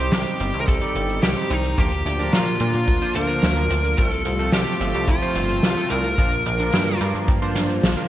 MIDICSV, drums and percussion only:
0, 0, Header, 1, 2, 480
1, 0, Start_track
1, 0, Tempo, 550459
1, 1552, Time_signature, 4, 2, 24, 8
1, 7046, End_track
2, 0, Start_track
2, 0, Title_t, "Drums"
2, 104, Note_on_c, 9, 38, 105
2, 111, Note_on_c, 9, 42, 67
2, 191, Note_off_c, 9, 38, 0
2, 198, Note_off_c, 9, 42, 0
2, 231, Note_on_c, 9, 42, 59
2, 318, Note_off_c, 9, 42, 0
2, 349, Note_on_c, 9, 42, 96
2, 436, Note_off_c, 9, 42, 0
2, 469, Note_on_c, 9, 42, 50
2, 557, Note_off_c, 9, 42, 0
2, 591, Note_on_c, 9, 36, 115
2, 597, Note_on_c, 9, 42, 79
2, 679, Note_off_c, 9, 36, 0
2, 684, Note_off_c, 9, 42, 0
2, 707, Note_on_c, 9, 42, 55
2, 794, Note_off_c, 9, 42, 0
2, 832, Note_on_c, 9, 42, 89
2, 919, Note_off_c, 9, 42, 0
2, 954, Note_on_c, 9, 42, 50
2, 1041, Note_off_c, 9, 42, 0
2, 1070, Note_on_c, 9, 38, 114
2, 1070, Note_on_c, 9, 42, 71
2, 1157, Note_off_c, 9, 38, 0
2, 1157, Note_off_c, 9, 42, 0
2, 1188, Note_on_c, 9, 42, 51
2, 1275, Note_off_c, 9, 42, 0
2, 1311, Note_on_c, 9, 42, 97
2, 1398, Note_off_c, 9, 42, 0
2, 1431, Note_on_c, 9, 42, 57
2, 1518, Note_off_c, 9, 42, 0
2, 1550, Note_on_c, 9, 42, 66
2, 1551, Note_on_c, 9, 36, 114
2, 1637, Note_off_c, 9, 42, 0
2, 1638, Note_off_c, 9, 36, 0
2, 1671, Note_on_c, 9, 42, 55
2, 1758, Note_off_c, 9, 42, 0
2, 1798, Note_on_c, 9, 42, 87
2, 1886, Note_off_c, 9, 42, 0
2, 1913, Note_on_c, 9, 42, 55
2, 2000, Note_off_c, 9, 42, 0
2, 2027, Note_on_c, 9, 42, 66
2, 2032, Note_on_c, 9, 38, 110
2, 2114, Note_off_c, 9, 42, 0
2, 2119, Note_off_c, 9, 38, 0
2, 2148, Note_on_c, 9, 42, 54
2, 2235, Note_off_c, 9, 42, 0
2, 2266, Note_on_c, 9, 42, 92
2, 2353, Note_off_c, 9, 42, 0
2, 2385, Note_on_c, 9, 42, 50
2, 2472, Note_off_c, 9, 42, 0
2, 2509, Note_on_c, 9, 36, 117
2, 2509, Note_on_c, 9, 42, 69
2, 2596, Note_off_c, 9, 42, 0
2, 2597, Note_off_c, 9, 36, 0
2, 2633, Note_on_c, 9, 42, 56
2, 2720, Note_off_c, 9, 42, 0
2, 2754, Note_on_c, 9, 42, 91
2, 2841, Note_off_c, 9, 42, 0
2, 2872, Note_on_c, 9, 42, 53
2, 2959, Note_off_c, 9, 42, 0
2, 2983, Note_on_c, 9, 42, 76
2, 2989, Note_on_c, 9, 38, 107
2, 3070, Note_off_c, 9, 42, 0
2, 3076, Note_off_c, 9, 38, 0
2, 3105, Note_on_c, 9, 42, 59
2, 3192, Note_off_c, 9, 42, 0
2, 3230, Note_on_c, 9, 42, 95
2, 3317, Note_off_c, 9, 42, 0
2, 3354, Note_on_c, 9, 42, 54
2, 3441, Note_off_c, 9, 42, 0
2, 3467, Note_on_c, 9, 42, 72
2, 3473, Note_on_c, 9, 36, 117
2, 3554, Note_off_c, 9, 42, 0
2, 3560, Note_off_c, 9, 36, 0
2, 3581, Note_on_c, 9, 42, 55
2, 3668, Note_off_c, 9, 42, 0
2, 3709, Note_on_c, 9, 42, 91
2, 3796, Note_off_c, 9, 42, 0
2, 3829, Note_on_c, 9, 42, 51
2, 3916, Note_off_c, 9, 42, 0
2, 3944, Note_on_c, 9, 38, 110
2, 3950, Note_on_c, 9, 42, 68
2, 4031, Note_off_c, 9, 38, 0
2, 4037, Note_off_c, 9, 42, 0
2, 4072, Note_on_c, 9, 42, 54
2, 4159, Note_off_c, 9, 42, 0
2, 4193, Note_on_c, 9, 42, 102
2, 4280, Note_off_c, 9, 42, 0
2, 4310, Note_on_c, 9, 42, 54
2, 4397, Note_off_c, 9, 42, 0
2, 4426, Note_on_c, 9, 36, 109
2, 4431, Note_on_c, 9, 42, 76
2, 4513, Note_off_c, 9, 36, 0
2, 4518, Note_off_c, 9, 42, 0
2, 4555, Note_on_c, 9, 42, 59
2, 4642, Note_off_c, 9, 42, 0
2, 4669, Note_on_c, 9, 42, 96
2, 4756, Note_off_c, 9, 42, 0
2, 4786, Note_on_c, 9, 42, 56
2, 4873, Note_off_c, 9, 42, 0
2, 4909, Note_on_c, 9, 38, 114
2, 4914, Note_on_c, 9, 42, 81
2, 4996, Note_off_c, 9, 38, 0
2, 5001, Note_off_c, 9, 42, 0
2, 5027, Note_on_c, 9, 42, 50
2, 5115, Note_off_c, 9, 42, 0
2, 5145, Note_on_c, 9, 42, 94
2, 5232, Note_off_c, 9, 42, 0
2, 5266, Note_on_c, 9, 42, 51
2, 5353, Note_off_c, 9, 42, 0
2, 5391, Note_on_c, 9, 36, 117
2, 5391, Note_on_c, 9, 42, 71
2, 5478, Note_off_c, 9, 36, 0
2, 5478, Note_off_c, 9, 42, 0
2, 5512, Note_on_c, 9, 42, 57
2, 5599, Note_off_c, 9, 42, 0
2, 5635, Note_on_c, 9, 42, 96
2, 5722, Note_off_c, 9, 42, 0
2, 5751, Note_on_c, 9, 42, 53
2, 5838, Note_off_c, 9, 42, 0
2, 5864, Note_on_c, 9, 42, 79
2, 5873, Note_on_c, 9, 38, 107
2, 5951, Note_off_c, 9, 42, 0
2, 5960, Note_off_c, 9, 38, 0
2, 5986, Note_on_c, 9, 42, 58
2, 6074, Note_off_c, 9, 42, 0
2, 6111, Note_on_c, 9, 42, 108
2, 6198, Note_off_c, 9, 42, 0
2, 6231, Note_on_c, 9, 42, 57
2, 6318, Note_off_c, 9, 42, 0
2, 6348, Note_on_c, 9, 42, 74
2, 6350, Note_on_c, 9, 36, 127
2, 6435, Note_off_c, 9, 42, 0
2, 6437, Note_off_c, 9, 36, 0
2, 6471, Note_on_c, 9, 42, 53
2, 6558, Note_off_c, 9, 42, 0
2, 6584, Note_on_c, 9, 38, 58
2, 6589, Note_on_c, 9, 42, 101
2, 6671, Note_off_c, 9, 38, 0
2, 6676, Note_off_c, 9, 42, 0
2, 6710, Note_on_c, 9, 42, 58
2, 6797, Note_off_c, 9, 42, 0
2, 6832, Note_on_c, 9, 38, 104
2, 6832, Note_on_c, 9, 42, 68
2, 6919, Note_off_c, 9, 38, 0
2, 6920, Note_off_c, 9, 42, 0
2, 6952, Note_on_c, 9, 42, 49
2, 7039, Note_off_c, 9, 42, 0
2, 7046, End_track
0, 0, End_of_file